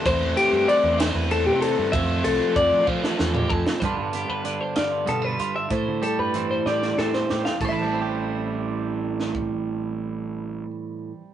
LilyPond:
<<
  \new Staff \with { instrumentName = "Clean electric guitar" } { \time 6/8 \key a \minor \tempo 4. = 63 c''8 g'8 d''8 c''16 b'16 a'16 g'16 a'8 | e''8 a'8 d''8 c''16 b'16 a'16 g'16 a'8 | b'8 g'16 b'8 c''16 d''8 a'16 b'8 e''16 | c''8 a'16 b'8 c''16 d''8 a'16 c''8 f''16 |
<a' c'' e'' a''>2.~ | <a' c'' e'' a''>2. | }
  \new Staff \with { instrumentName = "Clean electric guitar" } { \time 6/8 \key a \minor << { r2. | r2. | <d b d' f'>8 b8 d'8 f'8 b16 d'16 f'8 | r8 g8 c'8 g'8 c'8 g'8 |
<e g c' g'>2.~ | <e g c' g'>2. | } \\ { r2. | r2. | g,4 d4 g,4 | a,4 e4 e,4 |
a,2.~ | a,2. | } >> }
  \new Staff \with { instrumentName = "Overdriven electric guitar" } { \time 6/8 \key a \minor <e a c' e'>4. <e a c' e'>4. | <f a c' f'>4. <f a c' f'>4. | r2. | r2. |
r2. | r2. | }
  \new Staff \with { instrumentName = "Fingered electric bass" } { \clef bass \time 6/8 \key a \minor e,8 r16 g,16 r16 e,8 e,8 c8 g,16 | f,8 c,16 r16 f,16 r16 f16 r16 e,8 f,16 r16 | g,16 g,8 g,8 r16 g,8 b,8 g,16 r16 | a,16 d16 r16 g,8. a,8 a,8 a,16 r16 |
a,,2.~ | a,,2. | }
  \new DrumStaff \with { instrumentName = "Drums" } \drummode { \time 6/8 <bd cymr>8 cymr8 cymr8 <cymr sn>8 cymr8 cymr8 | <bd cymr>8 cymr8 <bd cymr>8 bd16 sn16 sn16 toml16 bd16 sn16 | <hh bd>8 hh8 hh8 <hh sn>8 hh8 hh8 | <hh bd>8 hh8 hh8 sn16 sn16 sn16 sn16 sn16 sn16 |
<cymc bd>4. r4 sn16 bd16 | r4. r4. | }
>>